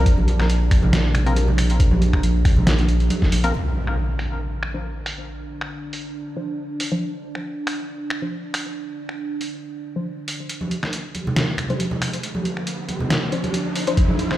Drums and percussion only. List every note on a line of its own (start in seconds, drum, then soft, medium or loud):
0.06 kick loud
0.06 closed hi-hat medium
0.18 high conga medium
0.28 closed hi-hat medium
0.40 finger snap medium
0.40 snare soft
0.50 closed hi-hat medium
0.71 finger snap medium
0.71 kick loud
0.71 open hi-hat medium
0.83 high conga medium
0.83 low conga medium
0.93 snare loud
0.93 closed hi-hat medium
1.14 finger snap medium
1.14 closed hi-hat medium
1.14 low conga medium
1.26 closed hi-hat soft
1.36 closed hi-hat medium
1.36 high conga medium
1.48 low conga medium
1.58 finger snap medium
1.58 open hi-hat loud
1.70 closed hi-hat medium
1.80 kick loud
1.80 closed hi-hat medium
1.91 high conga medium
2.02 closed hi-hat medium
2.13 finger snap soft
2.13 kick medium
2.23 closed hi-hat medium
2.45 finger snap medium
2.45 kick loud
2.45 open hi-hat medium
2.56 high conga medium
2.56 low conga medium
2.67 snare loud
2.67 closed hi-hat medium
2.79 closed hi-hat soft
2.89 closed hi-hat medium
3.00 closed hi-hat soft
3.10 closed hi-hat medium
3.10 high conga loud
3.22 kick medium
3.22 snare soft
3.32 open hi-hat loud
3.44 closed hi-hat medium
3.87 finger snap soft
4.19 finger snap medium
4.19 open hi-hat medium
4.63 finger snap medium
5.06 finger snap medium
5.06 open hi-hat medium
5.61 finger snap soft
5.93 open hi-hat medium
6.80 open hi-hat medium
7.35 finger snap soft
7.67 finger snap medium
7.67 open hi-hat medium
8.10 finger snap medium
8.54 finger snap medium
8.54 open hi-hat medium
9.09 finger snap soft
9.41 open hi-hat medium
10.28 open hi-hat medium
10.49 closed hi-hat medium
10.61 high conga medium
10.71 closed hi-hat medium
10.83 finger snap soft
10.83 snare soft
10.93 closed hi-hat medium
11.15 closed hi-hat soft
11.15 high conga medium
11.27 low conga medium
11.36 snare loud
11.36 closed hi-hat medium
11.58 finger snap medium
11.58 closed hi-hat medium
11.58 low conga medium
11.70 closed hi-hat soft
11.70 high conga medium
11.80 closed hi-hat medium
11.91 low conga medium
12.02 finger snap medium
12.02 open hi-hat medium
12.13 closed hi-hat medium
12.23 closed hi-hat medium
12.35 high conga medium
12.45 closed hi-hat medium
12.57 finger snap soft
12.67 closed hi-hat medium
12.89 closed hi-hat medium
12.89 high conga medium
13.00 low conga medium
13.10 snare loud
13.10 closed hi-hat medium
13.32 closed hi-hat medium
13.44 closed hi-hat soft
13.44 high conga medium
13.54 closed hi-hat medium
13.76 open hi-hat medium
13.87 closed hi-hat medium
13.97 kick loud
13.97 closed hi-hat medium
14.08 high conga medium
14.19 closed hi-hat medium
14.31 finger snap soft
14.31 snare soft